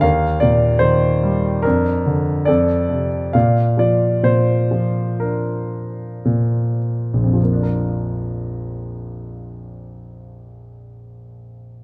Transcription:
<<
  \new Staff \with { instrumentName = "Grand piano" } { \time 4/4 \key bes \major \tempo 4 = 60 << { f''8 d''8 c''4 bes'4 d''8. r16 | f''8 d''8 c''4 bes'4 r4 | r1 | } \\ { bes'2 d'4 a'4 | d''2 d'2 | r1 | } >> }
  \new Staff \with { instrumentName = "Grand piano" } { \clef bass \time 4/4 \key bes \major ees,8 bes,8 ees8 g8 f,8 d8 f,8 c8 | bes,8 f8 bes,8 f4. bes,4 | <bes,, f, f bes d' bes'>1 | }
>>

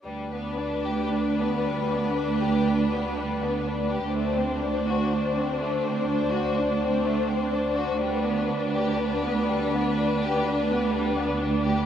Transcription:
<<
  \new Staff \with { instrumentName = "Violin section" } { \time 4/4 \key g \major \tempo 4 = 61 b'1 | c''1 | b'1 | }
  \new Staff \with { instrumentName = "Viola section" } { \time 4/4 \key g \major d'1 | d'1 | d'1 | }
  \new Staff \with { instrumentName = "Violin section" } { \time 4/4 \key g \major g16 b16 d'16 g'16 d'16 b16 g16 b16 d'16 g'16 d'16 b16 g16 b16 d'16 g'16 | a16 c'16 d'16 fis'16 d'16 c'16 a16 c'16 d'16 fis'16 d'16 c'16 a16 c'16 d'16 fis'16 | g16 b16 d'16 g'16 d'16 b16 g16 b16 d'16 g'16 d'16 b16 g16 b16 d'16 g'16 | }
  \new Staff \with { instrumentName = "Cello section" } { \clef bass \time 4/4 \key g \major d,1 | d,1 | d,1 | }
>>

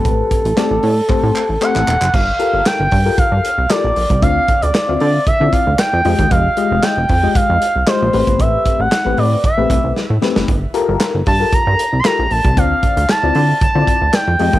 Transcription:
<<
  \new Staff \with { instrumentName = "Analog synth lead" } { \time 4/4 \key g \dorian \tempo 4 = 115 a'2. fis''4 | f''4 g''4 f''4 d''4 | f''8. d''8. d''8 e''8 f''8 g''4 | f''4 g''4 f''4 c''4 |
e''8. fis''8. d''8 e''4 r4 | r4. a''8 bes''8.~ bes''32 c'''32 bes''8 a''8 | f''4 a''4 a''4 g''8.~ g''32 r32 | }
  \new Staff \with { instrumentName = "FM electric piano" } { \time 4/4 \key g \dorian <a c' g' b'>8. r16 <a c' g' d''>8 r8 <a c' g' c''>8 r8 <a c' g' a'>8 r8 | r8 <f' g' a' bes'>8. r8 <f' g' a' bes'>8. r8 <f' g' a' bes'>8 r8 | <c' d' f' d''>8. r8 <c' f' e'' f''>8 r8 <c' e' f' d''>8. r8 <aes f' g' ees''>8~ | <aes f' g' ees''>16 r16 <aes f' g' ees''>8. r8 <aes f' g' ees''>8. r8 <aes f' g' ees''>8 <a c' g' b'>8~ |
<a c' g' b'>4 r16 <a c' g' b'>8 r8 <a c' g' b'>8. r8 <a c' g' b'>8 | r8 <f' g' a' bes'>8. r8 <f' g' a' bes'>8. r8 <f' g' a' bes'>8 r8 | <c' d' f' d''>8. r8 <c' e' f' d''>8 r8 <c' e' f' c'' d''>8. r8 <aes f' g' ees''>8 | }
  \new Staff \with { instrumentName = "Analog synth bass" } { \clef bass \time 4/4 \key g \dorian a,,8 r16 a,,16 r16 a,,16 a,8 a,16 a,16 r16 a,,16 r16 a,,16 e,,16 fis,,16 | g,,8 r16 g,,16 r16 g,,16 g,8 g,16 g,16 r16 c,16 r16 bes,,16 bes,,16 c,16 | d,8 r16 d,16 r16 d,16 d8 d16 d16 r16 d,16 r16 f,16 f,16 ees,16 | f,,8 r16 f,,16 r16 f,,16 f,8 f,16 f,16 r16 c,16 r16 bes,,16 a,,16 g,,16 |
a,,8 r16 a,,16 r16 a,,16 a,8 r16 bes,,16 c,16 c,16 r16 a,16 r16 fis,,16 | g,,8 r16 g,,16 r16 g,,16 g,8 g,16 g,16 r16 c,16 r16 bes,,16 bes,,16 c,16 | d,8 r16 d,16 r16 d,16 d8 d16 d16 r16 d,16 r16 f,16 f,16 ees,16 | }
  \new DrumStaff \with { instrumentName = "Drums" } \drummode { \time 4/4 <hh bd>8 <hh bd>16 hh16 <hc hh sn>8 hho8 <hc bd>8 hc8 hc16 hc16 hc16 hc16 | <cymc bd>8 hh8 <hc hh sn>8 <hho bd>8 <hh bd>8 hh8 <hc hh sn>8 hho16 <hh bd>16 | <hh bd>8 <hh bd>16 hh16 <hc hh sn>8 hho8 <hh bd>8 <hh bd>8 <hc hh sn>8 hho16 <hh bd>16 | <hh bd>8 hh8 <hc hh sn>8 <hho bd>8 <hh bd>8 hh8 <hc hh sn>8 hho16 <hh bd>16 |
<hh bd>8 <hh bd>8 <hc hh sn>8 hho8 <hh bd>8 <hh bd>8 sn8 sn16 sn16 | <hh bd>8 hh8 <hc hh sn>8 <hho bd>8 <hh bd>8 hh8 <hc hh sn>8 hho16 <hh bd>16 | <hh bd>8 <hh bd>16 hh16 <hc hh sn>8 hho8 <hh bd>8 <hh bd>8 <hc hh sn>8 hho16 <hh bd>16 | }
>>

